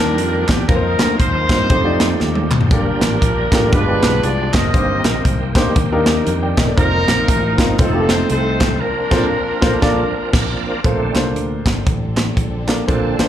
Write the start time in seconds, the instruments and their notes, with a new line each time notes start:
Already playing: fingered electric bass D#2, grand piano D#3 G3 D4 F4 A5, tonewheel organ D#3 F3 A#3 G4 D5, horn section D4 G4 A#4
0.18 fingered electric bass F2, closed hi-hat
0.48 fingered electric bass E2, horn section G4, kick, snare, clap, closed hi-hat
0.67 fingered electric bass F2, tonewheel organ F3 A#3 C4 D#4 A4, grand piano A#3 C4 D#4 F4 B4, horn section D#4 A#4, kick, closed hi-hat
0.74 tonewheel organ A#4, grand piano C5
0.99 fingered electric bass D2, snare, clap, closed hi-hat
1.18 fingered electric bass D#2, horn section D#4 C5, kick, closed hi-hat
1.49 fingered electric bass G2, grand piano A#3 C4 D#4 F4 C5, kick, snare, clap, closed hi-hat
1.69 fingered electric bass F2, tonewheel organ F3 A3 C4 D#4 G4, grand piano A3 D#4 F4 G4 C5, kick, closed hi-hat
1.85 grand piano A3 D#4 F4 G4 D5
2.00 snare, clap, closed hi-hat
2.20 fingered electric bass D#2, snare
2.35 high tom
2.51 clap, mid tom
2.61 floor tom
2.71 fingered electric bass G1, grand piano G2 A#3 D4 F4 G4 A#4, tonewheel organ F3 G3 A#3 D4 G4, horn section D4 F4 A#4, kick, closed hi-hat
3.01 fingered electric bass A1, snare, clap, closed hi-hat
3.22 fingered electric bass A#1, kick, closed hi-hat
3.52 fingered electric bass A1, grand piano A3 D4 F4 G4 A#4, kick, snare, clap, closed hi-hat
3.71 fingered electric bass G1, grand piano G2 G#3 D4 F4 G4 B4, tonewheel organ F3 G#3 B3 D4 G4, horn section D4 F4 B4, kick, closed hi-hat
3.88 grand piano G#3 D4 F4 G4 D5
4.03 fingered electric bass B1, snare, clap, closed hi-hat
4.23 fingered electric bass C2, horn section D5, closed hi-hat
4.54 fingered electric bass F#1, horn section A#4 C5 D#5, kick, snare, clap, closed hi-hat
4.74 fingered electric bass G1, grand piano G2 A#3 C4 D#4 G4 C5, tonewheel organ D#3 A#3 C4 G4, kick, closed hi-hat
5.05 fingered electric bass A#1, snare, clap, closed hi-hat
5.25 fingered electric bass C2, kick, closed hi-hat
5.55 fingered electric bass D2, grand piano A#3 D4 D#4 G4 C5, kick, snare, clap, closed hi-hat
5.76 fingered electric bass D#2, kick, closed hi-hat
5.92 grand piano A#3 D4 D#4 G4 A#4
6.06 snare, clap, closed hi-hat
6.27 fingered electric bass F2, closed hi-hat
6.43 grand piano D5 G5
6.57 fingered electric bass E1, grand piano A#4 D#5, kick, snare, clap, closed hi-hat
6.68 grand piano A4 D5
6.76 fingered electric bass F1, tonewheel organ F3 A#3 C4 D#4 A#4, grand piano A#3 C4 D#4 F4 C5, horn section D#4 A#4, kick, closed hi-hat
7.08 fingered electric bass A#1, snare, clap, closed hi-hat
7.28 fingered electric bass A1, kick, closed hi-hat
7.58 fingered electric bass G1, grand piano A#3 C4 D#4 F4 A#4, kick, snare, clap, closed hi-hat
7.79 fingered electric bass F1, tonewheel organ F3 A3 C4 D#4 G4, grand piano A3 C4 D#4 F4 C5, horn section C4 D#4 A4, kick, closed hi-hat
7.85 tonewheel organ A4
7.93 grand piano A3 C4 D#4 F4 G4
8.00 grand piano A4
8.09 horn section C5, snare, clap, closed hi-hat
8.30 fingered electric bass C2, horn section D#4 A4 C5, closed hi-hat
8.60 kick, snare, clap, closed hi-hat
8.80 tonewheel organ F3 A#3 C4 D4 A#4, horn section D4 F4 A#4
9.11 fingered electric bass A#1, grand piano A#2 A#3 C4 F4 A4 C5, kick, snare, crash
9.18 grand piano D4
9.61 fingered electric bass A#1, grand piano A#3 D4 F4 A4 C5, kick, snare
9.82 fingered electric bass A#1, grand piano A#3 D4 F4 A4 D5, kick, snare
10.33 fingered electric bass A#1, kick, snare, crash
10.84 fingered electric bass A#1, grand piano A#2 A#3 D4 A4 C5, tonewheel organ D3 A3 C4, string section C4, kick, closed hi-hat
11.15 fingered electric bass C2, grand piano A#3 D4 A4 C5, snare, clap, closed hi-hat
11.35 fingered electric bass D2, closed hi-hat
11.66 fingered electric bass G1, kick, snare, clap, closed hi-hat
11.87 fingered electric bass A1, kick, closed hi-hat
12.17 snare, clap, closed hi-hat
12.37 fingered electric bass A#1, kick, closed hi-hat
12.68 grand piano A#3 D4 A4 D5, snare, clap, closed hi-hat
12.87 fingered electric bass A#1, grand piano A#2 A#3 D4 A4 C5, tonewheel organ D3 C4 A4, kick, closed hi-hat
13.19 fingered electric bass A1, grand piano A#3 D4 A4 C5, snare, clap, closed hi-hat